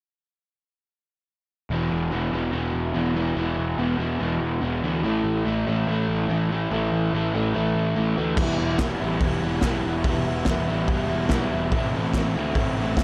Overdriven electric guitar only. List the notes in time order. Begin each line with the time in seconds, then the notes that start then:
1.71 E2 B2 E3
2.11 E2 B2 E3
2.33 E2 B2 E3
2.52 E2 B2 E3
2.93 E2 B2 E3
3.14 E2 B2 E3
3.36 E2 B2 E3
3.78 E2 B2 E3
3.98 E2 B2 E3
4.20 E2 B2 E3
4.62 E2 B2 E3
4.83 E2 B2 E3
5.04 A2 E3 A3
5.45 A2 E3 A3
5.67 A2 E3 A3
5.89 A2 E3 A3
6.29 A2 E3 A3
6.50 A2 E3 A3
6.71 A2 E3 A3
7.13 A2 E3 A3
7.33 A2 E3 A3
7.54 A2 E3 A3
7.95 A2 E3 A3
8.17 A2 E3 A3
8.37 E3 G3 B3
8.42 E4
8.58 B3 E4
8.63 G3
8.80 E3 G3 B3 E4
8.99 G3 B3 E4
9.04 E3
9.20 E3 G3 B3
9.25 E4
9.41 B3 E4
9.45 G3
9.63 E3 G3 B3 E4
9.84 G3 B3 E4
10.05 E3 G3 B3 E4
10.26 B3 E4
10.30 G3
10.46 E3 G3 B3
10.50 E4
10.68 E3 G3 B3 E4
10.88 E3 G3 B3
10.93 E4
11.09 B3 E4
11.14 G3
11.31 E3 G3 B3
11.36 E4
11.51 B3 E4
11.56 G3
11.72 A2 E3 A3 C4
11.77 E4
11.94 C4 E4
11.99 A3
12.15 E3 A3 C4 E4
12.35 E3 A3 C4 E4
12.39 A2
12.54 E3 A3 C4
12.58 E4
12.76 C4 E4
12.80 A3
12.97 A2 E3 A3 C4